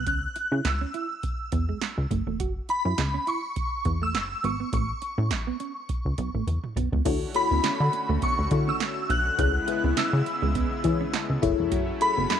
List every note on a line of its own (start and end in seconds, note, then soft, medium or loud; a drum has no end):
0.07 0.27 C#2 loud
0.07 0.18 C#4 medium
0.07 0.67 F#6 loud
0.07 kick loud
0.07 closed hi-hat medium
0.36 muted clean electric guitar stroke soft
0.36 closed hi-hat medium
0.52 0.61 C#3 medium
0.52 0.61 E4 medium
0.65 0.85 C#2 loud
0.65 2.07 E6 medium
0.65 muted clean electric guitar stroke soft
0.65 snare loud
0.65 clap loud
0.65 closed hi-hat medium
0.81 0.90 C#4 medium
0.94 1.05 E4 medium
0.94 closed hi-hat medium
1.23 muted clean electric guitar stroke soft
1.23 kick loud
1.23 closed hi-hat medium
1.52 1.73 E2 medium
1.52 1.64 B3 medium
1.52 kick medium
1.52 closed hi-hat medium
1.69 1.78 G#3 medium
1.81 muted clean electric guitar stroke soft
1.81 snare loud
1.81 clap medium
1.81 closed hi-hat medium
1.98 2.07 C#2 medium
2.11 2.22 F#1 loud
2.11 2.22 A3 medium
2.11 kick medium
2.11 closed hi-hat medium
2.27 2.41 E1 medium
2.27 2.36 A3 medium
2.40 2.60 F#1 loud
2.40 2.51 F#4 medium
2.40 kick loud
2.40 closed hi-hat loud
2.69 3.29 B5 medium
2.69 muted clean electric guitar stroke soft
2.69 closed hi-hat medium
2.85 2.94 F#2 medium
2.85 2.94 E4 medium
2.98 3.18 C#2 loud
2.98 snare loud
2.98 clap medium
2.98 closed hi-hat medium
3.14 3.23 C#4 medium
3.27 3.38 E4 medium
3.27 4.04 C#6 medium
3.27 closed hi-hat medium
3.56 muted clean electric guitar stroke soft
3.56 kick loud
3.56 closed hi-hat medium
3.85 4.16 E2 medium
3.85 3.97 B3 medium
3.85 kick medium
3.85 closed hi-hat medium
4.02 4.10 A3 medium
4.02 4.45 E6 loud
4.14 4.35 F#1 medium
4.14 muted clean electric guitar stroke soft
4.14 snare loud
4.14 clap medium
4.14 closed hi-hat medium
4.44 4.64 G#1 medium
4.44 4.55 B3 medium
4.44 4.72 C#6 medium
4.44 closed hi-hat medium
4.60 4.69 B3 medium
4.73 4.93 A1 loud
4.73 4.84 A3 medium
4.73 6.44 C#6 medium
4.73 kick loud
4.73 closed hi-hat medium
5.02 muted clean electric guitar stroke soft
5.02 closed hi-hat medium
5.18 5.32 A2 loud
5.18 5.27 C#4 medium
5.31 5.51 A1 medium
5.31 muted clean electric guitar stroke soft
5.31 snare loud
5.31 clap medium
5.31 closed hi-hat medium
5.47 5.56 B3 medium
5.60 5.71 C#4 medium
5.60 closed hi-hat medium
5.89 muted clean electric guitar stroke soft
5.89 kick loud
5.89 closed hi-hat medium
6.05 6.14 C#2 medium
6.18 6.30 B1 medium
6.18 6.30 B3 medium
6.18 kick medium
6.18 closed hi-hat medium
6.34 6.43 A1 medium
6.34 6.43 A3 medium
6.47 6.59 E2 medium
6.47 muted clean electric guitar stroke soft
6.47 closed hi-hat medium
6.47 high tom soft
6.64 mid tom medium
6.76 6.88 B1 medium
6.76 6.88 B3 medium
6.76 closed hi-hat medium
6.76 mid tom medium
6.92 7.02 C#2 medium
6.92 7.02 B3 medium
6.92 floor tom medium
7.05 7.26 D2 loud
7.05 9.36 D3 medium
7.05 9.36 A3 medium
7.05 9.36 C#4 medium
7.05 7.17 D4 medium
7.05 7.19 E4 medium
7.05 9.36 F#4 medium
7.05 7.20 F#4 medium
7.05 7.20 A4 medium
7.05 7.20 C#5 loud
7.05 kick loud
7.05 closed hi-hat loud
7.05 crash loud
7.34 7.86 E4 medium
7.34 7.86 F#4 medium
7.34 7.86 A4 medium
7.34 7.86 C#5 medium
7.34 7.90 B5 loud
7.34 muted clean electric guitar stroke soft
7.34 closed hi-hat medium
7.51 7.60 D2 medium
7.51 7.60 B3 medium
7.64 7.70 D3 medium
7.64 7.75 C#4 medium
7.64 snare loud
7.64 clap loud
7.64 closed hi-hat medium
7.80 7.89 D3 loud
7.93 muted clean electric guitar stroke medium
7.93 closed hi-hat medium
8.09 8.18 D2 loud
8.09 8.18 A3 medium
8.22 8.34 B3 medium
8.22 8.70 C#6 loud
8.22 kick loud
8.22 closed hi-hat medium
8.38 8.47 D2 medium
8.38 muted clean electric guitar stroke soft
8.51 8.72 D3 loud
8.51 8.90 E4 medium
8.51 8.90 F#4 medium
8.51 8.90 A4 medium
8.51 8.90 C#5 medium
8.51 kick medium
8.51 closed hi-hat medium
8.68 8.77 C#4 medium
8.68 9.11 E6 loud
8.80 snare loud
8.80 clap medium
8.80 closed hi-hat medium
9.10 9.30 B1 loud
9.10 9.21 D4 medium
9.10 9.38 F#6 loud
9.10 closed hi-hat medium
9.38 9.59 C#2 loud
9.38 11.40 C#3 medium
9.38 11.40 G#3 medium
9.38 11.40 B3 medium
9.38 9.50 C#4 medium
9.38 11.40 E4 medium
9.38 9.53 E4 medium
9.38 9.53 G#4 medium
9.38 9.53 B4 medium
9.38 9.53 C#5 medium
9.38 9.93 F#6 loud
9.38 kick loud
9.38 closed hi-hat loud
9.67 10.19 E4 medium
9.67 10.19 G#4 medium
9.67 10.19 B4 medium
9.67 10.19 E5 medium
9.67 muted clean electric guitar stroke soft
9.67 closed hi-hat medium
9.84 9.93 C#2 loud
9.84 9.93 B3 medium
9.97 10.04 C#3 medium
9.97 10.08 C#4 medium
9.97 11.39 E6 medium
9.97 snare loud
9.97 clap loud
9.97 closed hi-hat medium
10.13 10.22 C#3 loud
10.26 muted clean electric guitar stroke medium
10.26 closed hi-hat medium
10.42 10.63 C#2 medium
10.42 10.51 G#3 medium
10.55 10.67 B3 medium
10.55 kick loud
10.55 closed hi-hat medium
10.71 muted clean electric guitar stroke soft
10.84 11.05 E2 medium
10.84 11.23 E4 medium
10.84 11.23 G#4 medium
10.84 11.23 B4 medium
10.84 11.23 C#5 medium
10.84 kick medium
10.84 closed hi-hat medium
11.01 11.10 C#4 medium
11.13 11.68 A5 medium
11.13 snare loud
11.13 clap medium
11.13 closed hi-hat medium
11.30 11.39 C#2 medium
11.42 11.54 F#1 loud
11.42 12.40 F#3 medium
11.42 12.40 A3 medium
11.42 12.40 C#4 medium
11.42 11.90 E4 loud
11.42 11.54 E4 medium
11.42 12.40 E4 medium
11.42 11.90 G#4 loud
11.42 11.91 A4 loud
11.42 11.91 C#5 loud
11.42 kick medium
11.42 closed hi-hat medium
11.59 11.73 E1 medium
11.72 11.92 F#1 loud
11.72 11.83 F#4 medium
11.72 kick loud
11.72 closed hi-hat loud
12.01 12.40 E4 medium
12.01 12.40 G#4 medium
12.01 12.40 A4 medium
12.01 12.40 C#5 medium
12.01 12.40 B5 loud
12.01 muted clean electric guitar stroke medium
12.01 closed hi-hat medium
12.17 12.26 F#1 loud
12.17 12.26 B3 medium
12.30 12.37 F#2 medium
12.30 12.40 C#4 medium
12.30 snare loud
12.30 clap loud
12.30 closed hi-hat medium